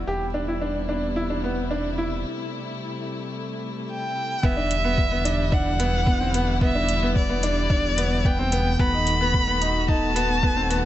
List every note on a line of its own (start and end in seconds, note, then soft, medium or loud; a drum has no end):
0.00 4.39 G3 medium
0.06 2.25 E1 medium
0.06 4.39 C3 medium
0.06 2.23 B3 medium
0.06 4.39 E4 medium
0.06 0.24 G4 medium
0.34 0.43 D4 medium
0.48 0.56 E4 medium
0.61 0.79 D4 medium
0.89 1.06 D4 medium
1.16 1.25 E4 medium
1.30 1.38 D4 medium
1.44 1.61 B3 medium
1.71 1.88 D4 medium
1.98 2.15 E4 medium
2.26 4.41 A3 medium
3.90 4.46 G5 medium
4.43 8.77 E1 medium
4.43 8.76 D3 medium
4.43 8.76 G3 medium
4.43 4.52 B3 medium
4.43 10.85 B3 medium
4.43 8.76 E4 medium
4.43 5.55 E5 loud
4.43 kick loud
4.57 4.74 D4 medium
4.71 closed hi-hat medium
4.84 5.01 B3 medium
4.98 kick loud
5.11 5.20 B3 medium
5.25 5.42 D4 medium
5.25 closed hi-hat medium
5.52 5.69 D4 medium
5.52 6.62 F#5 loud
5.52 kick loud
5.79 5.96 B3 medium
5.79 closed hi-hat medium
6.06 6.15 B3 medium
6.06 kick loud
6.21 6.29 C4 medium
6.34 6.51 B3 medium
6.34 closed hi-hat medium
6.61 6.70 B3 medium
6.61 7.13 E5 loud
6.61 kick loud
6.75 6.92 D4 medium
6.89 closed hi-hat medium
7.03 7.20 B3 medium
7.16 8.27 D5 loud
7.16 kick loud
7.29 7.38 B3 medium
7.43 7.60 D4 medium
7.43 closed hi-hat medium
7.70 7.87 D4 medium
7.70 kick loud
7.97 8.15 B3 medium
7.97 closed hi-hat medium
8.25 8.33 B3 medium
8.25 8.81 G5 loud
8.25 kick loud
8.39 8.47 C4 medium
8.52 8.69 B3 medium
8.52 closed hi-hat medium
8.79 10.85 D#1 medium
8.79 10.85 D#3 medium
8.79 10.85 A3 medium
8.79 8.88 B3 loud
8.79 10.85 F#4 medium
8.79 9.89 B5 loud
8.79 kick loud
8.94 9.11 D#4 medium
9.07 closed hi-hat medium
9.21 9.38 B3 medium
9.34 kick loud
9.47 9.56 B3 medium
9.62 9.79 D#4 medium
9.62 closed hi-hat medium
9.89 10.06 D#4 medium
9.89 10.85 A5 loud
9.89 kick loud
10.16 10.33 B3 medium
10.16 closed hi-hat medium
10.43 10.52 B3 medium
10.43 kick loud
10.57 10.65 C4 medium
10.70 10.85 B3 medium
10.70 closed hi-hat medium